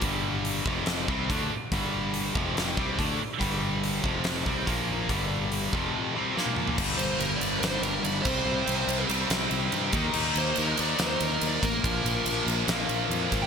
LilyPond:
<<
  \new Staff \with { instrumentName = "Lead electric guitar" } { \time 4/4 \key g \minor \tempo 4 = 142 r1 | r1 | r1 | r1 |
r8 c''8 bes'8 d''8 c''8 bes'8 d''8 c''8~ | c''4. r2 r8 | r8 c''8 bes'8 d''8 c''8 bes'8 d''8 bes'8~ | bes'4. r4. \tuplet 3/2 { r4 g''8 } | }
  \new Staff \with { instrumentName = "Distorted electric guitar" } { \clef bass \time 4/4 \key g \minor <g, d g>4. <f, c f>4 <c g c'>8 <d a d'>8 r8 | <g, d g>4. <f, c f>4 <c g c'>8 <d a d'>8 r8 | <g, d g>4. <f, c f>4 <c g c'>8 <bes, f bes>4 | <g, d g>4. <f, c f>4 <c g c'>8 <bes, f bes>4 |
<g, d g>2 <g, d g>4. <c g c'>8~ | <c g c'>4. <c g c'>2 <ees bes ees'>8~ | <ees bes ees'>4. <ees bes ees'>2 r8 | <bes, f bes>2 <bes, f bes>2 | }
  \new Staff \with { instrumentName = "Distorted electric guitar" } { \clef bass \time 4/4 \key g \minor <g, d g>4. <f, c f>4 <c g c'>8 <d a d'>8 r8 | <g, d g>4. <f, c f>4 <c g c'>8 <d a d'>8 r8 | <g, d g>4. <f, c f>4 <c g c'>8 <bes, f bes>4 | <g, d g>4. <f, c f>4 <c g c'>8 <bes, f bes>4 |
<g, d g>2 <g, d g>4. <c g c'>8~ | <c g c'>4. <c g c'>2 <ees bes ees'>8~ | <ees bes ees'>4. <ees bes ees'>2 r8 | <bes, f bes>2 <bes, f bes>2 | }
  \new Staff \with { instrumentName = "Fingered electric bass" } { \clef bass \time 4/4 \key g \minor g,,4. f,,4 c,8 d,8 r8 | g,,4. f,,4 c,8 d,8 r8 | g,,4. f,,4 c,8 bes,,4 | g,,4. f,,8 r2 |
g,,8 g,,8 g,,8 g,,8 g,,8 g,,8 g,,8 c,8 | c,8 c,8 c,8 c,8 c,8 c,8 g,8 ees,8 | ees,8 ees,8 ees,8 ees,8 ees,8 ees,8 ees,8 a,,8 | bes,,8 bes,,8 bes,,8 bes,,8 bes,,8 bes,,8 f,8 aes,,8 | }
  \new DrumStaff \with { instrumentName = "Drums" } \drummode { \time 4/4 <hho bd>4 hho8 bd8 <hho sn>8 bd8 <hho bd>4 | <hho bd>4 hho8 bd8 <hho sn>8 bd8 <hho bd>4 | <hho bd>4 hho8 bd8 <hho sn>8 bd8 <hho bd>4 | <hho bd>4 hho8 bd8 r4 sn16 tommh16 toml16 tomfh16 |
<cymc bd>8 cymr8 cymr8 cymr8 <cymr sn>8 cymr8 cymr8 <cymc bd>8 | r8 cymr8 cymr8 cymr8 <cymr sn>8 cymr8 cymr8 <bd cymr>8 | cymc8 cymr8 cymr8 cymr8 <cymr sn>8 cymr8 cymr8 <bd cymr>8 | <bd cymr>8 cymr8 cymr8 cymr8 <cymr sn>8 cymr8 cymr8 <bd cymr sn>8 | }
>>